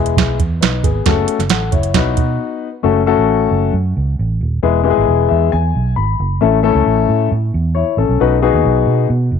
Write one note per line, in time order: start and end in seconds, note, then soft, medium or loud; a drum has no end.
0.00 0.14 E1 medium
0.00 0.36 G#3 medium
0.00 0.37 B3 medium
0.00 0.37 E4 medium
0.00 0.37 G#4 medium
0.06 closed hi-hat soft
0.17 0.36 B1 medium
0.17 kick medium
0.17 snare loud
0.17 closed hi-hat medium
0.39 0.59 E2 medium
0.39 kick medium
0.39 closed hi-hat medium
0.61 0.81 B1 medium
0.61 0.83 D#4 soft
0.61 0.82 B4 medium
0.61 snare loud
0.61 closed hi-hat medium
0.83 1.03 G#1 medium
0.83 1.27 B3 medium
0.83 1.26 G#4 medium
0.83 kick medium
0.83 closed hi-hat medium
1.06 1.25 F#1 medium
1.06 1.38 A3 medium
1.06 1.38 C#4 medium
1.06 1.38 F#4 medium
1.06 1.38 A4 medium
1.06 kick loud
1.06 snare medium
1.06 closed hi-hat medium
1.28 closed hi-hat medium
1.39 1.49 F#1 medium
1.39 snare soft
1.39 closed hi-hat soft
1.50 1.69 A1 medium
1.50 1.72 A4 soft
1.50 1.72 F#5 medium
1.50 snare loud
1.50 closed hi-hat medium
1.72 1.92 F#1 medium
1.72 2.15 E4 medium
1.72 2.15 C#5 medium
1.72 kick medium
1.72 closed hi-hat medium
1.83 closed hi-hat soft
1.94 2.14 B1 loud
1.94 2.66 B3 medium
1.94 2.67 D#4 medium
1.94 2.67 F#4 medium
1.94 2.67 B4 medium
1.94 kick medium
1.94 snare loud
1.94 closed hi-hat medium
2.17 2.37 B2 medium
2.17 kick medium
2.17 closed hi-hat medium
2.83 3.13 F#1 loud
2.83 3.00 A3 medium
2.83 3.00 C#4 medium
2.83 3.00 F#4 medium
2.83 3.00 A4 medium
3.06 3.71 A3 medium
3.06 3.71 C#4 medium
3.06 3.71 F#4 medium
3.06 3.71 A4 medium
3.18 3.47 A1 medium
3.51 3.70 F#1 medium
3.73 3.93 F#2 loud
3.97 4.16 C#2 medium
4.19 4.38 A1 medium
4.41 4.60 D#1 medium
4.63 4.92 E1 medium
4.63 4.79 G#3 medium
4.63 4.79 B3 medium
4.63 4.79 E4 medium
4.63 4.79 G#4 medium
4.83 5.48 G#3 medium
4.83 5.49 B3 medium
4.83 5.49 E4 medium
4.83 4.90 G4 medium
4.90 5.52 G#4 medium
4.98 5.07 G#1 medium
5.08 5.27 E1 medium
5.29 5.50 E2 medium
5.29 5.50 E5 medium
5.52 5.72 E2 loud
5.52 5.94 G#5 medium
5.75 5.94 B1 medium
5.96 6.16 G#1 medium
5.96 6.38 B5 medium
6.20 6.39 F#1 medium
6.41 6.71 A1 loud
6.41 6.57 A3 medium
6.41 6.57 C#4 medium
6.41 6.57 E4 medium
6.41 6.58 A4 medium
6.63 7.27 A3 medium
6.63 7.27 C#4 medium
6.63 7.27 E4 medium
6.63 7.28 A4 medium
6.75 6.84 C#2 medium
6.86 7.05 A1 medium
7.09 7.28 A2 medium
7.32 7.50 A2 loud
7.54 7.82 E2 medium
7.75 7.96 E4 medium
7.75 7.96 C#5 medium
7.97 8.07 A1 medium
7.97 8.40 C#4 medium
7.97 8.40 A4 medium
8.09 8.18 B1 medium
8.20 8.49 B1 loud
8.20 8.36 B3 medium
8.20 8.36 D#4 medium
8.20 8.36 F#4 medium
8.20 8.36 B4 medium
8.42 9.06 B3 medium
8.42 9.06 D#4 medium
8.42 9.06 F#4 medium
8.42 9.06 G#4 medium
8.54 8.63 D#2 medium
8.65 8.84 B1 medium
8.87 9.06 B2 medium
9.10 9.29 B2 loud
9.31 9.39 F#1 medium